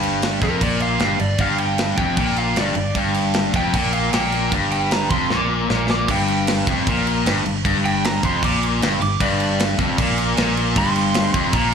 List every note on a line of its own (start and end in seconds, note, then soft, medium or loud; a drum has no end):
0.00 0.38 G1 loud
0.00 0.41 G2 loud
0.00 crash medium
0.22 snare loud
0.22 crash medium
0.42 0.60 F1 loud
0.42 0.61 F2 loud
0.42 0.62 A#4 medium
0.42 kick loud
0.42 snare soft
0.42 crash medium
0.61 0.98 A#1 loud
0.61 1.00 A#2 loud
0.61 0.81 D5 medium
0.61 kick loud
0.61 crash medium
0.80 1.20 F5 medium
0.80 crash medium
0.99 1.18 G1 medium
0.99 1.19 G2 loud
0.99 snare loud
0.99 crash medium
1.19 1.38 G1 medium
1.19 1.36 G2 medium
1.19 1.40 D5 medium
1.19 crash medium
1.38 1.94 G1 medium
1.38 1.98 G2 loud
1.38 1.59 F5 medium
1.38 kick loud
1.38 crash medium
1.58 1.78 G5 loud
1.58 crash medium
1.78 snare loud
1.78 crash medium
1.97 2.16 F1 loud
1.97 2.17 F2 loud
1.97 2.16 G5 loud
1.97 kick loud
1.97 crash medium
2.17 2.54 A#1 medium
2.17 2.57 A#2 loud
2.17 2.38 G5 loud
2.17 kick loud
2.17 crash medium
2.36 2.58 F5 medium
2.36 crash medium
2.56 2.75 G1 medium
2.56 2.76 G2 loud
2.56 2.96 D5 loud
2.56 snare loud
2.56 crash medium
2.75 2.94 G1 medium
2.75 2.93 G2 medium
2.75 crash medium
2.95 3.50 G1 loud
2.95 3.55 G2 loud
2.95 kick loud
2.95 crash medium
3.14 crash medium
3.34 snare loud
3.34 crash medium
3.54 3.73 F1 loud
3.54 3.74 F2 loud
3.54 3.74 G5 medium
3.54 kick loud
3.54 snare soft
3.54 crash medium
3.74 4.10 A#1 loud
3.74 4.13 A#2 loud
3.74 3.93 G5 medium
3.74 kick loud
3.74 crash loud
3.93 4.13 F5 loud
3.93 crash medium
4.13 4.50 A#1 medium
4.13 4.53 A#2 loud
4.13 4.52 G5 loud
4.13 snare loud
4.13 crash medium
4.32 crash medium
4.52 5.07 G1 loud
4.52 5.11 G2 loud
4.52 kick loud
4.52 crash medium
4.71 4.91 G5 loud
4.71 crash medium
4.91 5.10 A#5 loud
4.91 snare loud
4.91 crash medium
5.10 5.29 F1 medium
5.10 5.31 F2 loud
5.10 5.30 C6 medium
5.10 kick loud
5.10 crash medium
5.30 5.67 A#1 medium
5.30 5.69 A#2 loud
5.30 5.50 D6 loud
5.30 snare medium
5.70 6.06 A#1 medium
5.70 6.08 A#2 loud
5.70 snare medium
5.90 6.09 D6 loud
5.90 snare medium
6.08 6.63 G1 loud
6.08 6.67 G2 loud
6.08 6.48 G5 loud
6.08 kick loud
6.08 crash loud
6.28 crash medium
6.47 snare loud
6.47 crash medium
6.67 6.86 F1 loud
6.67 6.87 F2 loud
6.67 kick loud
6.67 snare soft
6.67 crash medium
6.87 7.23 A#1 loud
6.87 7.26 A#2 loud
6.87 kick loud
6.87 crash medium
7.07 crash medium
7.24 7.43 G1 medium
7.24 7.45 G2 loud
7.24 snare loud
7.24 crash medium
7.45 7.63 G1 medium
7.45 7.61 G2 medium
7.45 crash medium
7.65 8.20 G1 loud
7.65 8.23 G2 loud
7.65 kick loud
7.65 crash medium
7.85 8.05 G5 loud
7.85 crash medium
8.04 8.25 A#5 loud
8.04 snare loud
8.04 crash medium
8.23 8.41 F1 medium
8.23 8.42 F2 loud
8.23 8.43 C6 medium
8.23 kick loud
8.23 crash medium
8.42 8.79 A#1 loud
8.42 8.82 A#2 loud
8.42 8.63 D6 loud
8.42 kick loud
8.42 crash medium
8.63 crash medium
8.81 8.99 G1 medium
8.81 9.01 G2 loud
8.81 snare loud
8.81 crash medium
9.00 9.19 G1 medium
9.00 9.17 G2 medium
9.00 9.21 D6 loud
9.00 crash medium
9.20 9.75 G1 loud
9.20 9.79 G2 loud
9.20 9.59 D5 loud
9.20 kick loud
9.20 crash medium
9.40 crash medium
9.60 snare loud
9.60 crash medium
9.78 9.97 F1 medium
9.78 9.99 F2 loud
9.78 kick loud
9.78 snare soft
9.78 crash medium
9.98 10.35 A#1 loud
9.98 10.37 A#2 loud
9.98 kick loud
9.98 crash loud
10.18 crash medium
10.37 10.74 A#1 medium
10.37 10.76 A#2 loud
10.37 snare loud
10.37 crash medium
10.57 crash medium
10.76 11.31 G1 loud
10.76 11.34 G2 loud
10.76 11.53 C6 loud
10.76 kick loud
10.76 crash medium
10.96 crash medium
11.14 snare loud
11.14 crash medium
11.34 11.53 F1 medium
11.34 11.54 F2 loud
11.34 kick loud
11.34 crash medium
11.53 11.74 A#1 loud
11.53 11.74 A#2 loud
11.53 11.74 A#5 loud
11.53 kick loud
11.53 crash medium